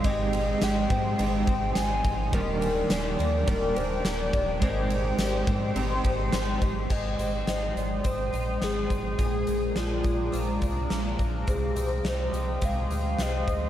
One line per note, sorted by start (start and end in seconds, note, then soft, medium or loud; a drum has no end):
0.00 2.29 G#3 medium
0.00 1.17 G#3 medium
0.00 0.89 C4 medium
0.00 0.33 D#4 medium
0.00 2.29 C6 medium
0.04 0.55 G#1 loud
0.04 2.33 G#3 medium
0.04 1.19 C4 medium
0.04 1.20 D#4 medium
0.04 0.61 G4 medium
0.04 0.65 D#5 loud
0.04 kick loud
0.04 ride medium
0.09 1.22 G4 medium
0.33 1.18 D#4 medium
0.33 ride medium
0.61 0.87 G#1 loud
0.61 2.33 G4 medium
0.61 1.18 G5 loud
0.61 snare loud
0.61 ride medium
0.61 tambourine medium
0.90 1.15 G#2 loud
0.90 1.46 C4 medium
0.90 kick medium
0.90 ride soft
1.18 1.44 G#1 loud
1.18 1.47 G#3 medium
1.18 1.48 C4 medium
1.18 2.04 D#4 medium
1.18 1.47 D#4 medium
1.18 1.78 G5 loud
1.18 ride medium
1.23 1.49 G4 medium
1.47 1.72 G#1 medium
1.47 2.39 C4 medium
1.47 2.34 C4 soft
1.47 2.36 D#4 soft
1.47 kick medium
1.47 ride soft
1.75 2.02 G#1 loud
1.75 2.35 G#5 loud
1.75 snare loud
1.75 ride medium
1.75 tambourine medium
2.04 2.30 G#1 loud
2.04 2.61 D#4 medium
2.04 kick medium
2.04 ride soft
2.31 2.83 D#1 loud
2.31 3.53 D#3 medium
2.31 5.83 D#3 medium
2.31 3.46 G3 medium
2.31 3.46 A#3 medium
2.31 2.89 G4 medium
2.31 2.93 A#4 loud
2.31 6.87 G5 medium
2.31 4.60 D6 medium
2.31 kick loud
2.31 ride medium
2.35 3.48 D4 medium
2.35 3.50 G4 medium
2.35 4.61 A#4 medium
2.61 3.46 D4 medium
2.61 ride medium
2.90 3.15 D#1 loud
2.90 4.04 G4 medium
2.90 3.50 D5 loud
2.90 snare loud
2.90 ride medium
2.90 tambourine medium
3.19 3.44 D#2 loud
3.19 3.75 A#3 medium
3.19 ride soft
3.46 3.73 D#1 medium
3.46 3.76 G3 medium
3.46 3.76 A#3 medium
3.46 4.32 D4 medium
3.46 3.77 D4 medium
3.46 3.78 A#4 medium
3.46 kick medium
3.46 ride medium
3.51 3.74 G4 medium
3.75 4.01 D#1 loud
3.75 4.68 A#3 medium
3.75 4.63 D4 medium
3.75 4.63 G4 medium
3.75 4.07 C5 medium
3.75 ride soft
3.80 4.62 A#3 soft
4.04 4.30 D#1 loud
4.04 4.62 G4 medium
4.04 4.33 D5 loud
4.04 snare loud
4.04 ride medium
4.04 tambourine medium
4.33 4.58 D#1 medium
4.33 4.67 D4 medium
4.33 4.64 D5 loud
4.33 kick medium
4.33 ride soft
4.60 5.12 G#1 loud
4.60 5.74 G#3 medium
4.60 6.89 G#3 medium
4.60 6.88 G#3 medium
4.60 5.76 C4 medium
4.60 5.19 G4 medium
4.60 6.33 C5 loud
4.60 6.88 C6 medium
4.60 kick loud
4.60 ride medium
4.65 5.77 D#4 medium
4.65 5.79 G4 medium
4.90 5.75 D#4 medium
4.90 ride soft
5.18 5.44 G#1 loud
5.18 6.33 G4 medium
5.18 snare loud
5.18 ride medium
5.18 tambourine medium
5.47 5.73 G#2 medium
5.47 6.04 C4 medium
5.47 kick medium
5.47 ride soft
5.75 6.01 G#1 loud
5.75 6.04 G#3 medium
5.75 6.05 C4 medium
5.75 6.61 D#4 medium
5.75 6.05 D#4 medium
5.75 ride medium
5.79 6.02 G4 medium
6.04 6.30 G#1 loud
6.04 7.18 C4 medium
6.04 7.42 D#4 medium
6.04 7.42 G4 medium
6.04 kick medium
6.04 ride soft
6.09 7.42 C4 medium
6.32 6.58 G#1 medium
6.32 6.90 G4 medium
6.32 snare loud
6.32 ride medium
6.32 tambourine medium
6.62 6.87 G#1 medium
6.62 7.47 D#4 medium
6.62 kick medium
6.62 ride soft
6.89 7.15 G#1 loud
6.89 11.43 G#3 medium
6.89 9.21 G#3 medium
6.89 7.76 G4 medium
6.89 7.44 D#5 loud
6.89 9.16 G5 medium
6.89 9.16 C6 medium
6.89 9.16 D#6 medium
6.89 kick medium
6.89 crash medium
7.18 7.44 G#1 medium
7.18 8.03 C4 soft
7.18 closed hi-hat medium
7.47 7.72 G#1 medium
7.47 8.31 D#4 medium
7.47 7.79 D#5 loud
7.47 snare loud
7.47 closed hi-hat medium
7.76 8.01 G#1 medium
7.76 8.07 D5 medium
7.76 closed hi-hat soft
8.04 8.30 G#1 medium
8.04 8.60 C4 medium
8.04 8.65 C5 loud
8.04 kick medium
8.04 closed hi-hat medium
8.33 8.58 A#1 medium
8.33 8.89 D#4 medium
8.33 closed hi-hat soft
8.62 8.87 G#1 medium
8.62 9.25 C4 medium
8.62 9.19 G#4 medium
8.62 snare medium
8.62 closed hi-hat medium
8.90 9.15 G#1 medium
8.90 9.24 D#4 soft
8.90 kick medium
8.90 closed hi-hat soft
9.18 9.44 A#1 loud
9.18 11.47 A#2 medium
9.18 10.03 G#4 medium
9.18 9.79 G#4 loud
9.18 11.45 F5 medium
9.18 11.45 A#5 medium
9.18 11.45 D6 medium
9.18 kick medium
9.18 closed hi-hat medium
9.47 9.73 A#1 medium
9.47 10.89 A#3 soft
9.47 closed hi-hat medium
9.75 10.02 A#1 loud
9.75 10.60 D4 medium
9.75 10.91 F4 medium
9.75 snare loud
9.75 closed hi-hat medium
10.04 10.30 A#1 loud
10.04 12.32 G#4 medium
10.04 kick medium
10.04 closed hi-hat soft
10.32 10.59 A#1 medium
10.32 11.53 F3 medium
10.32 closed hi-hat medium
10.61 10.87 C2 medium
10.61 11.17 D4 medium
10.61 kick medium
10.61 closed hi-hat soft
10.90 11.16 A#1 medium
10.90 11.53 A#3 medium
10.90 snare medium
10.90 closed hi-hat medium
11.19 11.44 A#1 medium
11.19 11.53 D4 soft
11.19 kick medium
11.19 closed hi-hat soft
11.46 11.73 C2 loud
11.46 13.70 C3 medium
11.46 13.70 G#3 medium
11.46 12.09 G#4 medium
11.46 13.70 G5 medium
11.46 13.70 C6 medium
11.46 13.70 D#6 medium
11.46 kick medium
11.46 closed hi-hat medium
11.76 12.01 C2 medium
11.76 13.19 C4 soft
11.76 closed hi-hat medium
12.04 12.29 C2 medium
12.04 12.90 D#4 medium
12.04 12.66 C5 medium
12.04 snare loud
12.04 closed hi-hat medium
12.32 12.58 C2 medium
12.32 13.70 G4 medium
12.32 closed hi-hat soft
12.61 12.87 C2 loud
12.61 13.70 G#3 medium
12.61 13.24 F5 loud
12.61 kick medium
12.61 closed hi-hat medium
12.90 13.15 D2 medium
12.90 13.48 D#4 medium
12.90 closed hi-hat soft
13.19 13.44 C2 medium
13.19 13.70 C4 medium
13.19 13.70 D#5 loud
13.19 snare medium
13.19 closed hi-hat medium
13.47 13.70 D2 medium
13.47 13.70 D#4 soft
13.47 kick medium
13.47 closed hi-hat soft